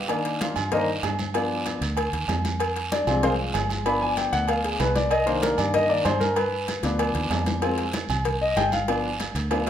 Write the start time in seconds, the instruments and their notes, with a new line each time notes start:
0.08 grand piano D#3 A#3 D4, cowbell, high conga, low agogo
0.25 cowbell, high conga
0.41 grand piano F4 F5, cowbell, high conga, low timbale, low agogo, short guiro
0.56 fingered electric bass G2, high conga, low conga, low agogo, short guiro
0.72 grand piano D#3 A#3 D4 D#4 A#4 C5 D#5, cowbell, high conga, low conga, long guiro
0.89 high conga
1.03 fingered electric bass G2, cowbell, high conga, low timbale, low agogo, short guiro
1.19 high conga, low agogo, short guiro
1.34 grand piano F3 B3 D4, cowbell, high conga, low agogo, long guiro
1.51 high conga
1.66 cowbell, high conga, low timbale, low agogo, short guiro
1.81 fingered electric bass D2, cowbell, high conga, low agogo, short guiro
1.97 cowbell, high conga, low agogo, long guiro
2.13 fingered electric bass D#2, cowbell, high conga
2.28 fingered electric bass F2, cowbell, high conga, low timbale, low agogo, short guiro
2.45 cowbell, high conga, short guiro
2.60 cowbell, high conga, low agogo, long guiro
2.76 cowbell, high conga
2.92 grand piano D4 D5, cowbell, high conga, low timbale, low agogo, short guiro
3.07 fingered electric bass C2, grand piano F3 G#3 C4, high conga, low conga, low agogo, short guiro
3.23 grand piano C4 F4 G#4 C5, cowbell, high conga, low conga, long guiro
3.39 high conga
3.54 fingered electric bass G1, cowbell, high conga, low timbale, low agogo, short guiro
3.70 high conga, low agogo, short guiro
3.86 grand piano F3 B3 D4 B5, cowbell, low agogo, long guiro
4.02 grand piano G#5, high conga
4.17 grand piano G5, cowbell, high conga, low timbale, low agogo, short guiro
4.33 fingered electric bass D2, grand piano F#5, cowbell, high conga, low agogo, short guiro
4.48 grand piano F5, cowbell, high conga, low agogo, long guiro
4.64 grand piano G#4, cowbell, high conga
4.80 fingered electric bass C2, grand piano B4, cowbell, high conga, low timbale, low agogo, short guiro
4.95 grand piano D5, cowbell, high conga, short guiro
5.11 grand piano D#5, cowbell, high conga, low agogo, long guiro
5.26 grand piano D#3 A#3 D4 C5, cowbell, high conga
5.42 grand piano A#4, cowbell, high conga, low timbale, low agogo, short guiro
5.58 fingered electric bass G2, grand piano D5, high conga, low conga, low agogo, short guiro
5.74 grand piano D#5, cowbell, high conga, low conga, long guiro
5.89 grand piano D#3 A#3 D4 D5, high conga
6.05 fingered electric bass G2, grand piano C5, cowbell, high conga, low timbale, low agogo, short guiro
6.20 grand piano A#4, high conga, low agogo, short guiro
6.36 grand piano B4, cowbell, high conga, low agogo, long guiro
6.53 high conga
6.68 cowbell, high conga, low timbale, low agogo, short guiro
6.83 fingered electric bass D2, grand piano F3 B3 D4, cowbell, low agogo, short guiro
6.99 cowbell, high conga, low agogo, long guiro
7.15 fingered electric bass D#2, cowbell, high conga
7.30 fingered electric bass F2, cowbell, high conga, low timbale, low agogo, short guiro
7.46 cowbell, high conga, short guiro
7.62 grand piano F3 G#3 C4, cowbell, high conga, low agogo, long guiro
7.78 cowbell, high conga
7.93 cowbell, high conga, low timbale, low agogo, short guiro
8.09 fingered electric bass C2, high conga, low conga, low agogo, short guiro
8.25 cowbell, high conga, low conga, long guiro
8.41 grand piano D#5, high conga
8.56 fingered electric bass G1, grand piano G5, cowbell, high conga, low timbale, low agogo, short guiro
8.72 grand piano F5, high conga, low agogo, short guiro
8.88 grand piano F3 B3 D4, cowbell, high conga, low agogo, long guiro
9.05 high conga
9.20 cowbell, high conga, low timbale, low agogo, short guiro
9.35 fingered electric bass D2, cowbell, high conga, low agogo, short guiro
9.51 grand piano F3 B3 D4, cowbell, high conga, high timbale, low agogo, long guiro
9.66 high timbale